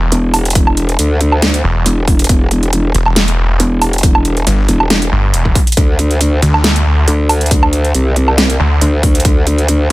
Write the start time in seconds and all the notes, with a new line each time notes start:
Already playing: E1
0.12 E1, closed hi-hat
0.34 open hi-hat, low woodblock
0.45 closed hi-hat
0.50 closed hi-hat
0.55 kick, closed hi-hat
0.67 low woodblock
0.77 closed hi-hat
0.89 closed hi-hat
0.99 D2, closed hi-hat
1.21 closed hi-hat
1.32 low woodblock
1.42 snare, closed hi-hat
1.54 closed hi-hat
1.64 E1
1.86 E1, closed hi-hat
2.08 kick, open hi-hat
2.19 closed hi-hat
2.24 closed hi-hat
2.29 E1, kick, closed hi-hat
2.51 closed hi-hat
2.63 closed hi-hat
2.73 closed hi-hat
2.94 E1, closed hi-hat
3.06 low woodblock
3.16 snare, closed hi-hat
3.28 closed hi-hat
3.38 E1
3.60 E1, closed hi-hat
3.82 open hi-hat, low woodblock
3.93 closed hi-hat
3.98 closed hi-hat
4.03 kick, closed hi-hat
4.15 low woodblock
4.25 closed hi-hat
4.37 closed hi-hat
4.47 G1, closed hi-hat
4.68 E1, closed hi-hat
4.80 low woodblock
4.90 snare, closed hi-hat
5.02 closed hi-hat
5.12 G1
5.34 E1, closed hi-hat
5.45 kick
5.55 kick, open hi-hat
5.67 closed hi-hat
5.72 closed hi-hat
5.77 D2, kick, closed hi-hat
5.99 closed hi-hat
6.11 closed hi-hat
6.21 closed hi-hat
6.42 D2, closed hi-hat
6.54 low woodblock
6.64 snare, closed hi-hat
6.76 closed hi-hat
6.86 D2
7.08 D2, closed hi-hat
7.29 open hi-hat, low woodblock
7.41 closed hi-hat
7.46 closed hi-hat
7.51 kick, closed hi-hat
7.63 low woodblock
7.73 closed hi-hat
7.85 closed hi-hat
7.95 C2, closed hi-hat
8.16 closed hi-hat
8.28 low woodblock
8.38 snare, closed hi-hat
8.50 closed hi-hat
8.60 D2
8.81 D2, closed hi-hat
9.03 kick, open hi-hat
9.15 closed hi-hat
9.20 closed hi-hat
9.25 D2, kick, closed hi-hat
9.47 closed hi-hat
9.58 closed hi-hat
9.68 closed hi-hat